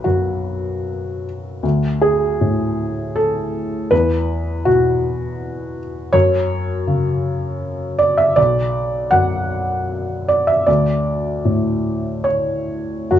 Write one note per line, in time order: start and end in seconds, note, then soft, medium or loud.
0.00 1.60 B1 soft
0.00 1.66 B4 medium
0.04 1.63 F#2 soft
0.04 1.23 F#4 soft
1.63 3.87 D2 soft
2.01 3.16 G#4 medium
2.41 3.92 A2 soft
3.16 3.91 A4 medium
3.91 6.10 E2 soft
3.91 4.65 B4 medium
4.65 6.14 B2 soft
4.65 5.77 F#4 medium
6.13 8.32 F#2 medium
6.13 7.98 C#5 medium
6.87 8.37 C#3 soft
7.99 8.18 D5 medium
8.18 8.37 E5 medium
8.36 10.64 B1 medium
8.36 9.12 D5 medium
9.11 10.67 F#2 soft
9.11 10.28 F#5 medium
10.28 10.48 D5 medium
10.47 10.67 E5 medium
10.67 13.08 D2 soft
10.67 12.25 D5 medium
11.45 13.11 A2 soft
12.24 13.11 C#5 medium
13.11 13.19 F#2 soft
13.11 13.19 F#4 medium